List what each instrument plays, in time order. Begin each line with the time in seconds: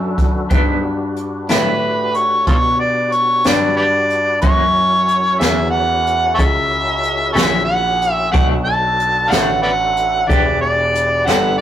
Already playing: grand piano F#2, tonewheel organ D4 F#4 A4 B4
0.18 kick, closed hi-hat
0.49 clean electric guitar G2 F#3 B3 D4, grand piano G2, tonewheel organ D#4 G#4 C5, kick, closed hi-hat
0.53 tonewheel organ G4
0.83 tonewheel organ D4 F#4 G4 B4
1.16 closed hi-hat
1.49 clean electric guitar G2 F#3 B3 D4, grand piano A2, harmonica B4, snare, closed hi-hat
2.14 harmonica C#5, closed hi-hat
2.47 grand piano B2, harmonica F4 A4 C#5, kick, closed hi-hat
2.80 harmonica D5
3.12 harmonica C#5, closed hi-hat
3.44 grand piano G2, clean electric guitar G2 F#3 B3 D4, harmonica D5, snare, closed hi-hat
3.77 harmonica G4 B4 D5
4.10 closed hi-hat
4.42 grand piano F#2, clean electric guitar F#2 E3 A#3 C#4, tonewheel organ C#4 E4 F#4 A#4, harmonica C#5, kick, closed hi-hat
5.08 closed hi-hat
5.38 grand piano E2, clean electric guitar E3 A#3 C#4, harmonica E5, snare, closed hi-hat
5.42 clean electric guitar F#2
5.70 harmonica F#5
6.07 closed hi-hat
6.35 harmonica A4 C#5 E5, kick
6.39 grand piano C#2, closed hi-hat
7.03 closed hi-hat
7.33 grand piano A#1, clean electric guitar F#2 E3 A#3 C#4, harmonica A4 C#5 E5, closed hi-hat
7.38 snare
7.65 harmonica F#5
8.02 closed hi-hat
8.13 harmonica E5
8.31 grand piano B1, clean electric guitar B2 A3 D4 F#4, tonewheel organ D4 F#4 A4 B4, harmonica F#5, kick, closed hi-hat
8.65 harmonica A5
9.00 closed hi-hat
9.28 clean electric guitar B2 A3 D4 F#4, harmonica F5 F#5, closed hi-hat
9.32 grand piano A1, snare
9.63 harmonica B4 D5 F#5
9.97 closed hi-hat
10.27 grand piano E1, clean electric guitar E3 B3 D4 G4, tonewheel organ D4 G4, harmonica D5, kick, closed hi-hat
10.32 tonewheel organ E4 B4
10.61 harmonica D5
10.95 closed hi-hat
11.25 grand piano G1, clean electric guitar E3 B3 D4 G4, harmonica F#5, snare, closed hi-hat